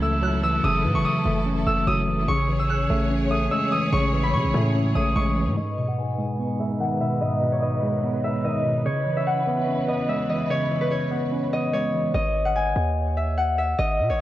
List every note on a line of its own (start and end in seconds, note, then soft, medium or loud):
0.00 0.60 C#2 loud
0.00 0.64 C#3 medium
0.00 0.23 E3 medium
0.00 2.25 F#3 medium
0.00 0.02 A3 loud
0.00 1.05 A3 medium
0.00 0.84 C#4 medium
0.00 2.25 E4 medium
0.00 2.25 A4 medium
0.00 0.43 E6 medium
0.00 0.22 F#6 medium
0.00 0.45 G#6 medium
0.22 1.25 F#3 loud
0.22 1.29 F#6 medium
0.43 0.83 E3 medium
0.43 0.70 E6 medium
0.64 0.86 F#1 loud
0.64 1.66 C#3 medium
0.64 1.04 D#6 loud
0.84 0.96 A2 loud
0.84 1.87 E3 medium
0.94 1.04 F#1 loud
0.94 2.21 C#6 medium
1.05 1.72 D#6 medium
1.25 1.65 F#1 loud
1.25 1.65 A3 medium
1.46 2.28 C#4 medium
1.66 1.86 F#1 loud
1.66 2.28 A3 medium
1.66 1.93 E6 medium
1.87 2.26 F#1 loud
1.87 2.28 F#3 loud
1.87 2.65 D#6 loud
2.07 2.28 E3 medium
2.28 2.87 A1 loud
2.28 3.31 C#3 medium
2.28 5.54 C#4 medium
2.28 5.54 G#4 medium
2.28 5.54 C#5 loud
2.28 3.54 C#6 loud
2.48 3.51 E3 medium
2.59 3.37 E6 medium
2.69 3.75 F#6 medium
2.90 3.49 A1 loud
2.90 3.29 A3 loud
3.10 4.13 C#4 medium
3.31 4.33 A3 medium
3.31 3.57 D#6 medium
3.51 4.54 G#3 loud
3.51 3.78 E6 medium
3.72 4.12 E3 medium
3.72 4.90 D#6 medium
3.92 4.35 A1 loud
3.92 4.95 C#3 medium
3.92 4.33 C#6 loud
4.13 5.16 E3 medium
4.23 5.58 B5 medium
4.34 4.45 C#3 loud
4.34 5.15 C#6 medium
4.44 4.54 A1 loud
4.54 4.94 A2 loud
4.54 4.94 A3 loud
4.75 5.57 C#4 medium
4.95 5.15 A1 loud
4.95 5.57 A3 medium
4.95 6.13 D#6 medium
5.16 5.48 A1 loud
5.16 5.57 G#3 loud
5.16 6.42 C#6 medium
5.36 5.57 E3 medium
5.47 5.56 A2 loud
5.57 6.60 G#2 medium
5.57 8.82 G#3 medium
5.57 8.82 D#4 medium
5.57 8.82 B4 medium
5.57 6.66 D#5 medium
5.78 6.80 B2 medium
5.88 6.80 F#5 medium
5.98 7.48 G#5 medium
6.18 6.59 G#3 medium
6.39 7.42 B3 medium
6.60 7.63 G#3 medium
6.60 7.00 E5 medium
6.80 7.83 D#3 medium
6.80 8.41 F#5 medium
7.01 7.41 B2 medium
7.01 7.27 E5 medium
7.21 8.24 G#2 medium
7.21 7.62 D#5 loud
7.42 8.45 B2 medium
7.52 8.85 C#5 medium
7.62 8.30 D#5 medium
7.83 8.23 G#3 medium
8.04 8.86 B3 medium
8.24 8.86 G#3 medium
8.24 8.51 E5 medium
8.45 8.86 D#3 medium
8.45 9.23 D#5 medium
8.65 8.86 B2 medium
8.86 9.88 C#3 medium
8.86 12.11 E3 medium
8.86 12.11 C#4 medium
8.86 12.11 B4 medium
8.86 10.50 C#5 loud
9.06 10.09 E3 medium
9.17 9.94 E5 medium
9.27 10.88 F#5 medium
9.47 9.87 B3 loud
9.68 10.71 C#4 medium
9.88 10.91 B3 medium
9.88 10.15 D#5 medium
10.09 11.12 G#3 medium
10.09 10.35 E5 medium
10.29 10.69 E3 medium
10.29 11.53 D#5 medium
10.50 11.53 C#3 medium
10.50 10.91 C#5 loud
10.70 11.73 E3 medium
10.81 12.86 B4 medium
10.91 11.73 C#5 medium
11.11 11.52 B3 medium
11.32 12.14 C#4 medium
11.53 12.15 B3 medium
11.53 12.14 D#5 medium
11.73 12.15 G#3 medium
11.73 13.64 C#5 medium
11.94 12.15 E3 medium
12.14 12.74 G#1 loud
12.14 13.23 D#5 medium
12.45 13.37 F#5 medium
12.56 14.06 G#5 medium
12.76 13.75 D#2 loud
13.17 13.58 E5 medium
13.38 14.21 F#5 medium
13.58 13.85 E5 medium
13.79 14.01 G#1 loud
13.79 14.19 D#5 loud
13.99 14.11 B2 loud
14.10 14.19 G#1 loud
14.10 14.21 C#5 medium